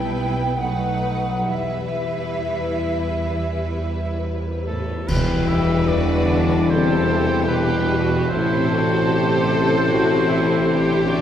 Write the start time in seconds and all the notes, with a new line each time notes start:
Already playing: B1 B2 G3 B3 E4 B4 G5
0.15 B3
0.36 E4
0.58 B2 F#3 A3 D#4 B4 F#5
0.80 F#3
1.02 B3
1.47 E2 E3 G3 E4 B4 E5
1.70 B3
1.93 E4
2.17 G4
2.85 B4
3.07 E4
3.30 E3
3.53 B3
3.76 E4
3.99 G4
4.21 B4
4.43 E5
4.66 A2 A4 B4
4.90 E4
5.08 E1 E2 B2 E3 G3 E4 G4 B4, concert bass drum, crash
5.48 E3 B4 E5
5.89 D3 B3 F#4 D5 G5
6.12 B5
6.31 D4 E5
6.69 C3 B3 E4 G4 A4 C5
7.48 B2 D4 G4 B4 G5
7.72 B5
7.92 F#4 E5
8.29 A1 A2 C3 A3 C4 E4 A4 C5
8.52 A3
8.72 D4 F#4 A4
8.92 E4
9.12 C4 G4 E5
9.31 A5
9.51 A4
9.72 E4
9.91 E3 C4 E4 F#4
10.11 A3
10.31 E4 A4
10.68 D4 E4 G4 E5
10.91 A5
11.10 D3 C4 F#4 A4 D5